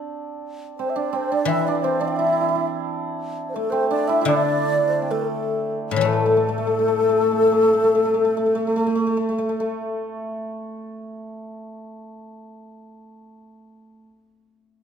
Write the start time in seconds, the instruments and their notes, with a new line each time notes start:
Already playing: hammered dulcimer C4 D4
0.77 hammered dulcimer C4, xiao C5
0.90 xiao E5
0.96 hammered dulcimer D4, xiao D5
1.13 hammered dulcimer C4, xiao C5
1.31 hammered dulcimer D4, xiao D5
1.45 guzheng E3, hammered dulcimer E4, xiao E5
1.65 hammered dulcimer D4, xiao D5
1.83 hammered dulcimer C4, xiao C5
2.00 hammered dulcimer D4, xiao D5
2.08 xiao G5
2.17 hammered dulcimer E4, xiao E5
2.26 hammered dulcimer E4
2.33 hammered dulcimer E4
2.41 hammered dulcimer E4
2.49 hammered dulcimer E4
2.55 hammered dulcimer E4
3.49 xiao C5
3.54 hammered dulcimer A3, xiao A4
3.70 hammered dulcimer C4, xiao C5
3.89 hammered dulcimer D4, xiao D5
4.08 hammered dulcimer E4, xiao E5
4.21 guzheng D3, hammered dulcimer E4
4.26 hammered dulcimer D4, xiao D5
4.36 xiao E5
4.44 xiao D5
4.88 xiao C5
5.02 hammered dulcimer C4
5.09 hammered dulcimer A3, xiao A4
5.91 guzheng A2
5.96 guzheng E3
6.01 guzheng A3, hammered dulcimer A3, xiao A4
6.13 hammered dulcimer A3
6.26 hammered dulcimer A3
6.37 hammered dulcimer A3
6.49 hammered dulcimer A3
6.58 hammered dulcimer A3
6.67 hammered dulcimer A3
6.79 hammered dulcimer A3
6.88 hammered dulcimer A3
7.00 hammered dulcimer A3
7.09 hammered dulcimer A3
7.21 hammered dulcimer A3
7.31 hammered dulcimer A3
7.42 hammered dulcimer A3
7.52 hammered dulcimer A3
7.62 hammered dulcimer A3
7.73 hammered dulcimer A3
7.84 hammered dulcimer A3
7.95 hammered dulcimer A3
8.05 hammered dulcimer A3
8.14 hammered dulcimer A3
8.25 hammered dulcimer A3
8.37 hammered dulcimer A3
8.46 hammered dulcimer A3
8.55 hammered dulcimer A3
8.67 hammered dulcimer A3
8.76 hammered dulcimer A3
8.86 hammered dulcimer A3
8.95 hammered dulcimer A3
9.07 hammered dulcimer A3
9.17 hammered dulcimer A3
9.29 hammered dulcimer A3
9.38 hammered dulcimer A3
9.49 hammered dulcimer A3
9.60 hammered dulcimer A3